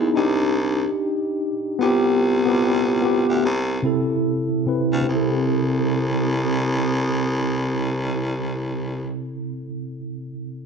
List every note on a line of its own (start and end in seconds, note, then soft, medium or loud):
0.00 0.15 B3 medium
0.00 0.14 D#4 medium
0.00 0.14 E4 medium
0.00 0.16 G#4 medium
0.14 0.86 C2 loud
0.14 1.50 D4 medium
0.14 1.51 D#4 medium
0.14 1.52 G4 loud
1.79 3.24 C2 loud
1.79 2.31 B3 loud
1.79 2.32 F4 medium
1.79 2.33 G4 loud
2.45 2.94 B3 medium
2.45 2.94 F4 medium
2.45 2.95 G4 medium
3.02 3.43 B3 medium
3.02 3.44 F4 medium
3.02 3.45 G4 loud
3.29 3.42 D2 medium
3.45 3.80 C2 loud
3.82 4.54 C3 medium
3.82 4.54 C4 medium
3.82 4.55 E4 medium
3.82 4.55 A4 medium
4.66 5.00 C3 medium
4.66 5.02 C4 medium
4.66 5.03 E4 medium
4.66 5.03 B4 medium
4.93 5.06 D2 medium
5.02 9.46 C3 medium
5.07 9.13 C2 loud
5.07 9.52 C4 medium
5.11 9.56 E4 medium
5.16 9.61 A4 medium